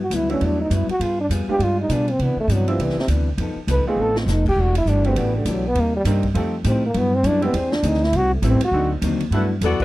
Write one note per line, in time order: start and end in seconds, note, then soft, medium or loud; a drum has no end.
0.03 0.16 F#4 medium
0.10 0.40 D2 medium
0.10 0.31 G2 medium
0.10 0.31 F#3 medium
0.10 0.32 B3 medium
0.10 0.32 E4 medium
0.10 hi-hat pedal medium
0.10 ride medium
0.15 0.31 E4 medium
0.30 0.69 F#3 medium
0.30 0.69 A3 medium
0.30 0.69 B3 medium
0.30 0.45 C#4 medium
0.30 0.69 D4 soft
0.30 0.69 E4 medium
0.30 ride soft
0.40 0.70 E2 medium
0.40 0.60 G2 soft
0.40 0.61 F#3 soft
0.40 0.61 B3 soft
0.40 0.60 D4 medium
0.40 0.62 E4 soft
0.40 ride medium
0.61 0.75 D#4 medium
0.70 0.87 F#2 medium
0.70 0.90 G2 medium
0.70 0.90 F#3 medium
0.70 0.90 B3 medium
0.70 0.91 E4 medium
0.70 0.90 E4 medium
0.70 hi-hat pedal medium
0.70 ride medium
0.88 1.05 F#4 medium
0.88 muted upright bass stroke soft
0.88 ride soft
1.00 1.29 G2 medium
1.00 1.19 G3 soft
1.00 1.20 B3 soft
1.00 1.21 F4 soft
1.00 1.20 F4 medium
1.00 1.21 G#4 medium
1.00 ride medium
1.21 1.27 D4 medium
1.29 1.47 F2 medium
1.29 1.49 G3 medium
1.29 1.50 B3 medium
1.29 1.50 F4 medium
1.29 1.50 G#4 medium
1.29 hi-hat pedal medium
1.29 ride medium
1.48 1.88 G3 medium
1.48 1.88 G#3 medium
1.48 1.88 B3 medium
1.48 1.88 D4 medium
1.48 1.88 F4 medium
1.48 1.65 G4 medium
1.48 muted upright bass stroke soft
1.59 1.88 G2 medium
1.59 1.79 G3 medium
1.59 1.80 B3 soft
1.59 1.80 F4 soft
1.59 ride medium
1.63 1.80 F4 medium
1.63 1.81 G#4 medium
1.81 1.95 D#4 medium
1.89 2.18 B2 medium
1.89 2.09 G3 medium
1.89 2.10 B3 medium
1.89 2.10 F4 medium
1.89 2.10 G#4 medium
1.89 hi-hat pedal medium
1.89 ride medium
1.93 2.13 D4 medium
2.08 2.25 C4 medium
2.08 ride soft
2.19 2.36 C3 medium
2.19 2.39 C3 soft
2.19 2.40 E3 soft
2.19 2.40 B3 soft
2.19 ride soft
2.23 2.40 B3 medium
2.23 2.41 D4 soft
2.36 2.54 A3 medium
2.36 muted upright bass stroke soft
2.48 2.77 G2 medium
2.48 2.69 C3 medium
2.48 2.69 E3 medium
2.48 2.69 B3 medium
2.48 2.70 D4 medium
2.48 hi-hat pedal medium
2.48 ride medium
2.53 2.72 F#3 medium
2.67 2.84 F3 medium
2.67 3.06 G3 medium
2.67 3.07 B3 medium
2.67 3.07 C4 medium
2.67 3.07 D4 medium
2.67 3.07 E4 medium
2.67 ride soft
2.78 2.95 C2 medium
2.78 2.98 C3 soft
2.78 2.99 E3 soft
2.78 2.99 B3 medium
2.78 3.00 D4 soft
2.78 ride medium
2.82 2.99 E3 medium
2.90 snare soft
2.96 3.06 C3 medium
2.96 muted upright bass stroke soft
2.96 snare soft
3.07 3.37 D2 medium
3.07 3.28 C3 medium
3.07 3.28 E3 medium
3.07 3.29 B3 medium
3.07 3.29 D4 medium
3.07 hi-hat pedal medium
3.07 ride medium
3.38 3.55 F2 medium
3.38 3.58 F3 soft
3.38 3.58 B3 medium
3.38 3.59 D#4 medium
3.38 ride medium
3.42 3.59 A4 medium
3.56 muted upright bass stroke soft
3.67 3.85 C2 medium
3.67 3.87 F3 medium
3.67 3.88 B3 medium
3.67 3.88 D#4 medium
3.67 3.89 A4 medium
3.67 3.87 B4 medium
3.67 hi-hat pedal medium
3.67 ride medium
3.87 4.26 A3 medium
3.87 4.26 B3 medium
3.87 4.26 C4 medium
3.87 4.26 D#4 medium
3.87 4.26 F4 medium
3.87 4.02 G#4 medium
3.96 4.26 A1 medium
3.96 4.17 F3 soft
3.96 4.17 B3 soft
3.96 4.18 D#4 soft
3.96 4.18 A4 medium
4.01 4.18 A4 loud
4.16 4.33 C4 soft
4.16 snare medium
4.26 4.56 F1 medium
4.26 4.47 F3 medium
4.26 4.47 B3 medium
4.26 4.48 D#4 medium
4.26 4.48 A4 medium
4.26 snare medium
4.26 hi-hat pedal medium
4.31 4.48 D#4 medium
4.46 4.63 G4 loud
4.46 kick medium
4.46 crash medium
4.56 4.85 E1 medium
4.56 4.77 E3 soft
4.56 4.77 A3 soft
4.56 4.78 D4 soft
4.60 4.77 F#4 medium
4.60 4.78 G4 soft
4.75 4.91 E4 medium
4.75 ride medium
4.85 5.15 G1 medium
4.85 5.06 E3 medium
4.85 5.07 A3 medium
4.85 5.07 D4 medium
4.85 5.07 G4 medium
4.85 hi-hat pedal medium
4.90 5.08 D4 medium
5.04 5.44 A3 medium
5.04 5.44 B3 medium
5.04 5.21 C4 medium
5.04 5.44 D4 medium
5.04 5.45 F#4 medium
5.04 5.45 G4 medium
5.04 ride soft
5.16 5.45 A1 medium
5.16 5.36 E3 soft
5.16 5.37 A3 soft
5.16 5.36 B3 medium
5.16 5.37 D4 medium
5.16 ride medium
5.20 5.38 G4 medium
5.38 5.52 D3 medium
5.45 5.74 B1 medium
5.45 5.65 E3 medium
5.45 5.66 A3 medium
5.45 5.66 D4 medium
5.45 5.67 G4 medium
5.45 hi-hat pedal soft
5.45 ride medium
5.50 5.69 F#3 medium
5.67 5.81 B3 loud
5.75 6.04 D#2 medium
5.75 5.95 C3 soft
5.75 5.96 G3 medium
5.75 5.96 A#3 soft
5.75 5.97 D#4 medium
5.75 ride medium
5.80 5.96 A#3 medium
5.96 6.03 G3 medium
6.05 6.34 G2 loud
6.05 6.25 C3 medium
6.05 6.26 G3 medium
6.05 6.22 A#3 medium
6.05 6.26 A#3 medium
6.05 6.22 C4 medium
6.05 6.22 D4 medium
6.05 6.22 D#4 medium
6.05 6.26 D#4 medium
6.05 6.22 G4 medium
6.05 hi-hat pedal medium
6.05 ride medium
6.23 kick soft
6.23 ride soft
6.34 6.64 F2 medium
6.34 6.54 F3 medium
6.34 6.51 A3 medium
6.34 6.55 A3 medium
6.34 6.51 C4 medium
6.34 6.51 D#4 soft
6.34 6.55 D#4 medium
6.34 6.52 F4 medium
6.34 6.56 G4 medium
6.34 6.52 A4 medium
6.34 ride medium
6.64 6.94 A2 loud
6.64 6.84 F3 medium
6.64 6.84 A3 medium
6.64 6.84 C4 medium
6.64 6.85 D#4 medium
6.64 6.85 G4 medium
6.64 hi-hat pedal medium
6.64 ride medium
6.86 6.99 A#3 medium
6.94 7.14 G2 soft
6.94 7.23 G2 medium
6.94 7.14 F#3 soft
6.94 7.15 B3 medium
6.94 7.15 E4 medium
6.94 ride medium
6.98 7.16 B3 medium
7.15 7.29 C4 loud
7.23 7.53 F#2 loud
7.23 7.44 G2 medium
7.23 7.44 F#3 medium
7.23 7.44 B3 medium
7.23 7.45 E4 medium
7.23 hi-hat pedal medium
7.23 ride medium
7.27 7.44 D4 loud
7.42 7.53 G#3 medium
7.42 7.58 B3 medium
7.42 7.53 C4 medium
7.42 7.53 D4 medium
7.42 7.53 E4 medium
7.42 7.53 G4 medium
7.42 ride soft
7.53 7.82 E2 medium
7.53 7.73 E3 soft
7.53 7.74 C4 soft
7.53 7.76 C4 medium
7.53 7.74 D4 soft
7.53 7.75 G#4 medium
7.53 ride medium
7.72 7.88 D4 medium
7.72 snare medium
7.83 8.12 D2 medium
7.83 8.03 E3 medium
7.83 8.03 C4 medium
7.83 8.04 D4 medium
7.83 8.04 G#4 medium
7.83 hi-hat pedal medium
7.83 ride medium
7.87 8.05 D#4 medium
7.94 snare soft
8.03 8.18 E4 loud
8.03 snare soft
8.12 8.42 C2 medium
8.12 8.33 A2 soft
8.12 8.34 G3 medium
8.12 8.34 C4 medium
8.12 8.34 E4 medium
8.12 8.33 F#4 loud
8.12 ride medium
8.34 8.49 A3 medium
8.42 8.60 A1 loud
8.42 8.62 A2 medium
8.42 8.63 G3 medium
8.42 8.60 A3 medium
8.42 8.60 B3 soft
8.42 8.63 C4 medium
8.42 8.60 C4 soft
8.42 8.60 E4 soft
8.42 8.63 E4 medium
8.42 8.60 G4 medium
8.42 hi-hat pedal medium
8.42 ride medium
8.47 8.63 C4 medium
8.61 8.91 F#4 loud
8.61 muted upright bass stroke soft
8.61 ride medium
8.72 9.01 D2 medium
8.72 8.92 D3 soft
8.72 8.92 F#3 medium
8.72 8.90 A3 medium
8.72 8.90 C4 medium
8.72 8.93 C4 soft
8.72 8.90 D4 medium
8.72 8.90 D#4 medium
8.72 8.93 D#4 medium
8.72 8.90 F#4 medium
9.02 9.30 D#2 loud
9.02 9.22 D3 medium
9.02 9.22 F#3 medium
9.02 9.23 C4 medium
9.02 9.23 D#4 medium
9.02 hi-hat pedal medium
9.02 ride medium
9.20 ride medium
9.31 9.60 G2 medium
9.31 9.51 G2 medium
9.31 9.52 F#3 soft
9.31 9.49 A3 soft
9.31 9.49 B3 soft
9.31 9.52 B3 medium
9.31 9.49 D4 soft
9.31 9.49 E4 soft
9.31 9.49 F#4 medium
9.31 9.45 A4 medium
9.31 9.45 B4 medium
9.31 9.45 E5 medium
9.31 9.45 F#5 medium
9.31 ride medium
9.35 9.53 E4 medium
9.61 9.78 E2 medium
9.61 9.81 G2 medium
9.61 9.82 F#3 medium
9.61 9.82 B3 medium
9.61 9.80 B3 medium
9.61 9.82 E4 medium
9.61 9.80 F#4 medium
9.61 9.80 A4 medium
9.61 9.80 D5 medium
9.61 hi-hat pedal medium
9.61 ride medium
9.80 9.85 A3 medium
9.80 9.85 D4 medium
9.80 9.85 F#4 medium
9.80 9.85 B4 loud
9.80 muted upright bass stroke soft
9.80 kick medium
9.80 crash medium